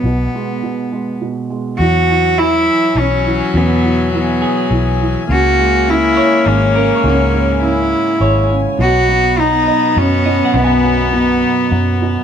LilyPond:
<<
  \new Staff \with { instrumentName = "String section" } { \time 3/4 \key e \lydian \tempo 4 = 103 << { r2. | gis''2.~ | gis''2.~ | gis''2.~ |
gis''2. | b''2. | ais''2. | } \\ { r2. | <fis' e''>2.~ | <fis' e''>2. | <e' cis''>2.~ |
<e' cis''>2. | <fis' dis''>2.~ | <fis' dis''>2. | } >> }
  \new Staff \with { instrumentName = "Clean electric guitar" } { \time 3/4 \key e \lydian r2. | r4 e'2~ | e'8 r4 gis'4.~ | gis'8 r4 cis''4 ais'16 cis''16~ |
cis''2 cis''4~ | cis''8 r4 dis''4 dis''16 fis''16 | gis''2~ gis''8 r8 | }
  \new Staff \with { instrumentName = "Cello" } { \time 3/4 \key e \lydian b2 r4 | fis'4 e'4 cis'4 | b4 b4. r8 | fis'4 e'4 cis'4 |
cis'4 e'4. r8 | fis'4 dis'4 cis'4 | b4 b4. r8 | }
  \new Staff \with { instrumentName = "Viola" } { \time 3/4 \key e \lydian r2. | fis2.~ | fis2. | ais2.~ |
ais2~ ais8 r8 | b2.~ | b2. | }
  \new Staff \with { instrumentName = "Felt piano" } { \clef bass \time 3/4 \key e \lydian b,8 gis8 b,8 gis8 b,8 gis8 | e8 e8 e4 e8 e8 | b,8 e8 e4 e8 e8 | cis8 gis8 cis4 gis8 cis8 |
gis,8 gis8 cis4 gis8 cis8 | b,8 fis8 b,4 fis8 b,8 | fis,8 fis8 b,4 fis8 b,8 | }
  \new Staff \with { instrumentName = "Fingered electric bass" } { \clef bass \time 3/4 \key e \lydian b,,8 r2 r8 | e,2 b,,4 | e,2 b,,4 | cis,2 gis,,4 |
cis,2 gis,,4 | b,,2 fis,4 | b,,2 fis,4 | }
>>